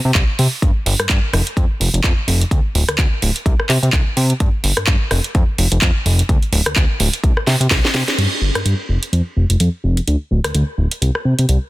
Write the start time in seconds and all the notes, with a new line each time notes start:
0.05 C3
0.15 C2, kick, clap
0.39 C3, open hi-hat
0.62 G2, kick, closed hi-hat
0.86 G1, open hi-hat
0.99 G2, cross-stick, closed hi-hat
1.09 G2, kick, clap, closed hi-hat
1.33 F1, cross-stick, open hi-hat
1.47 closed hi-hat
1.57 F2, kick, closed hi-hat
1.80 F1, open hi-hat
1.94 F1, closed hi-hat
2.04 F2, kick, clap, closed hi-hat
2.28 F1, open hi-hat
2.41 closed hi-hat
2.51 D2, kick, closed hi-hat
2.75 D1, open hi-hat
2.89 D2, cross-stick, closed hi-hat
2.98 D2, kick, clap, closed hi-hat
3.22 D1, open hi-hat
3.36 closed hi-hat
3.46 C2, kick, closed hi-hat
3.60 cross-stick
3.69 C3, clap, open hi-hat
3.83 C3, closed hi-hat
3.93 C2, kick, clap, closed hi-hat
4.17 C3, open hi-hat
4.30 closed hi-hat
4.40 G2, kick, closed hi-hat
4.64 G1, open hi-hat
4.77 G2, cross-stick, closed hi-hat
4.87 G2, kick, clap, closed hi-hat
5.11 F1, cross-stick, open hi-hat
5.24 closed hi-hat
5.35 F2, kick, closed hi-hat
5.58 F1, open hi-hat
5.72 F1, closed hi-hat
5.81 F2, kick, clap, closed hi-hat
6.06 F1, open hi-hat
6.19 closed hi-hat
6.29 D2, kick, closed hi-hat
6.42 closed hi-hat
6.52 D1, open hi-hat
6.66 D2, cross-stick, closed hi-hat
6.76 D2, kick, clap, closed hi-hat
7.00 D1, open hi-hat
7.13 closed hi-hat
7.24 C2, kick, closed hi-hat
7.37 cross-stick
7.47 C3, snare, open hi-hat
7.60 C3, closed hi-hat
7.71 C2, kick, snare, clap, closed hi-hat
7.85 snare
7.94 C3, snare, open hi-hat
8.08 snare, closed hi-hat
8.18 G2, closed hi-hat, crash
8.41 G1
8.55 G2, cross-stick, closed hi-hat
8.65 G2, closed hi-hat
8.89 F1
9.03 closed hi-hat
9.13 F2, closed hi-hat
9.36 F1
9.50 F1, closed hi-hat
9.60 F2, closed hi-hat
9.84 F1
9.97 closed hi-hat
10.08 D2, closed hi-hat
10.31 D1
10.44 D2, cross-stick, closed hi-hat
10.55 D2, closed hi-hat
10.78 D1
10.91 closed hi-hat
11.02 C2, closed hi-hat
11.15 cross-stick
11.25 C3
11.39 C3, closed hi-hat
11.49 C2, closed hi-hat